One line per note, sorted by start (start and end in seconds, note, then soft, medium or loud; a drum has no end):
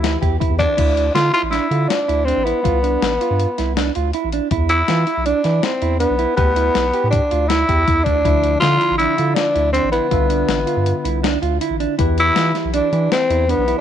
0.00 0.17 D2 loud
0.00 0.74 E3 medium
0.00 0.41 E4 medium
0.00 0.74 E4 medium
0.00 0.18 E4 medium
0.00 0.75 G4 medium
0.00 0.75 B4 medium
0.04 snare medium
0.04 closed hi-hat medium
0.22 0.38 E2 medium
0.22 0.36 G4 medium
0.22 kick medium
0.22 closed hi-hat medium
0.40 0.55 E4 medium
0.40 kick medium
0.40 closed hi-hat medium
0.50 0.66 E2 medium
0.59 1.11 D4 medium
0.59 0.73 D4 medium
0.59 kick medium
0.59 closed hi-hat medium
0.77 1.10 D2 loud
0.77 1.06 E4 medium
0.77 kick medium
0.77 closed hi-hat medium
0.77 crash medium
0.97 closed hi-hat medium
1.15 1.31 D3 medium
1.15 1.29 F4 medium
1.15 1.33 F4 medium
1.15 snare medium
1.15 closed hi-hat medium
1.33 1.48 E4 medium
1.33 1.42 F4 medium
1.33 closed hi-hat medium
1.43 1.59 A1 medium
1.51 1.66 D4 medium
1.51 1.90 E4 medium
1.51 snare soft
1.51 closed hi-hat medium
1.71 1.87 D3 medium
1.71 1.99 F4 medium
1.71 closed hi-hat medium
1.89 2.26 D4 medium
1.89 snare medium
1.89 closed hi-hat medium
2.08 2.33 D2 medium
2.08 2.23 E4 medium
2.08 closed hi-hat medium
2.25 2.46 C4 medium
2.25 2.41 D4 medium
2.25 closed hi-hat medium
2.37 2.53 A1 medium
2.44 3.94 B3 medium
2.44 2.60 E4 medium
2.44 closed hi-hat medium
2.64 2.97 C2 medium
2.64 2.78 F4 medium
2.64 kick medium
2.64 closed hi-hat medium
2.83 3.11 D4 medium
2.83 closed hi-hat medium
3.02 3.18 A1 medium
3.02 snare loud
3.02 closed hi-hat medium
3.21 3.49 F4 medium
3.21 closed hi-hat soft
3.31 3.46 G2 loud
3.40 closed hi-hat medium
3.58 3.90 C2 medium
3.58 3.72 E4 medium
3.58 snare soft
3.58 closed hi-hat medium
3.77 3.91 D4 medium
3.77 snare loud
3.77 closed hi-hat medium
3.95 4.12 D2 medium
3.95 4.10 F4 medium
3.95 closed hi-hat medium
4.13 4.28 E4 medium
4.13 closed hi-hat medium
4.25 4.40 A1 loud
4.32 4.47 D4 medium
4.32 closed hi-hat medium
4.51 4.83 E2 loud
4.51 4.80 E4 medium
4.51 kick medium
4.51 closed hi-hat medium
4.69 5.27 E4 medium
4.69 closed hi-hat medium
4.88 5.05 E3 medium
4.88 5.03 F4 medium
4.88 snare medium
4.88 closed hi-hat medium
5.07 5.21 E4 medium
5.07 closed hi-hat soft
5.17 5.33 B1 medium
5.26 5.65 D4 medium
5.26 5.40 D4 medium
5.26 closed hi-hat medium
5.44 5.61 E3 medium
5.44 5.73 E4 medium
5.44 snare soft
5.44 closed hi-hat medium
5.63 5.99 C4 medium
5.63 snare medium
5.63 closed hi-hat medium
5.82 6.06 E2 medium
5.82 5.96 E4 medium
5.82 closed hi-hat medium
6.00 6.35 B3 medium
6.00 6.15 D4 medium
6.00 closed hi-hat medium
6.10 6.26 B1 medium
6.19 6.33 E4 medium
6.19 closed hi-hat soft
6.37 6.70 D2 medium
6.37 7.08 B3 loud
6.37 6.52 G4 medium
6.37 kick loud
6.37 closed hi-hat medium
6.56 6.85 E4 medium
6.56 closed hi-hat medium
6.75 6.92 B1 medium
6.75 snare medium
6.75 closed hi-hat medium
6.94 7.22 G4 medium
6.94 closed hi-hat soft
7.04 7.20 A2 loud
7.11 7.50 D4 medium
7.11 kick loud
7.11 closed hi-hat medium
7.31 7.64 D2 medium
7.31 7.45 F4 medium
7.31 closed hi-hat medium
7.48 8.06 E4 medium
7.48 7.64 E4 medium
7.48 snare loud
7.48 closed hi-hat medium
7.69 7.85 E2 medium
7.69 7.83 G4 medium
7.69 kick medium
7.69 closed hi-hat medium
7.88 8.05 E2 medium
7.88 8.02 E4 medium
7.88 kick medium
7.88 closed hi-hat medium
8.04 8.23 D2 medium
8.04 8.59 D4 medium
8.04 8.20 D4 medium
8.04 kick medium
8.04 closed hi-hat medium
8.25 8.57 D2 medium
8.25 10.08 D3 medium
8.25 10.09 F3 soft
8.25 10.09 D4 medium
8.25 8.53 E4 medium
8.25 10.09 E5 medium
8.25 kick medium
8.25 closed hi-hat medium
8.44 closed hi-hat medium
8.60 8.79 D3 medium
8.60 8.96 F4 loud
8.60 8.76 F4 medium
8.60 snare medium
8.60 closed hi-hat medium
8.81 8.95 E4 medium
8.81 closed hi-hat medium
8.91 9.07 A1 medium
8.98 9.14 D4 medium
8.98 9.36 E4 medium
8.98 closed hi-hat medium
9.18 9.35 D3 medium
9.18 9.46 F4 medium
9.18 closed hi-hat medium
9.35 9.72 D4 medium
9.35 snare loud
9.35 closed hi-hat medium
9.55 9.80 D2 medium
9.55 9.69 E4 medium
9.55 closed hi-hat medium
9.73 9.91 C4 medium
9.73 9.88 D4 medium
9.73 closed hi-hat medium
9.84 10.00 A1 medium
9.92 11.38 B3 medium
9.92 10.07 E4 medium
9.92 closed hi-hat medium
10.11 10.44 C2 medium
10.11 11.95 D3 medium
10.11 11.95 D4 medium
10.11 10.26 F4 medium
10.11 11.96 F4 medium
10.11 11.96 E5 medium
10.11 kick loud
10.11 closed hi-hat medium
10.30 10.58 D4 medium
10.30 closed hi-hat medium
10.49 10.65 A1 medium
10.49 snare medium
10.49 closed hi-hat medium
10.67 10.95 F4 medium
10.67 closed hi-hat medium
10.77 10.93 G2 medium
10.86 closed hi-hat medium
11.05 11.37 C2 medium
11.05 11.19 E4 medium
11.05 closed hi-hat medium
11.23 11.38 D4 medium
11.23 snare loud
11.23 closed hi-hat medium
11.42 11.59 D2 loud
11.42 11.57 F4 medium
11.42 closed hi-hat medium
11.61 11.76 E4 medium
11.61 closed hi-hat medium
11.70 11.87 A1 medium
11.80 11.94 D4 medium
11.80 closed hi-hat medium
11.98 12.31 E2 loud
11.98 13.81 E3 medium
11.98 12.27 E4 medium
11.98 13.81 E4 medium
11.98 13.81 G4 medium
11.98 13.81 B4 medium
11.98 kick medium
11.98 closed hi-hat medium
12.18 12.54 E4 loud
12.18 closed hi-hat medium
12.36 12.53 E3 medium
12.36 12.50 F4 medium
12.36 snare loud
12.36 closed hi-hat medium
12.55 12.69 E4 medium
12.55 snare soft
12.55 closed hi-hat soft
12.65 12.81 B1 medium
12.74 12.88 D4 medium
12.74 13.09 D4 medium
12.74 closed hi-hat medium
12.93 13.09 E3 loud
12.93 13.21 E4 medium
12.93 closed hi-hat medium
13.12 13.52 C4 medium
13.12 snare loud
13.12 closed hi-hat medium
13.30 13.54 E2 medium
13.30 13.44 E4 medium
13.30 closed hi-hat medium
13.49 13.77 B3 medium
13.49 13.63 D4 medium
13.49 closed hi-hat medium
13.58 13.74 B1 medium
13.68 13.81 E4 medium
13.68 closed hi-hat medium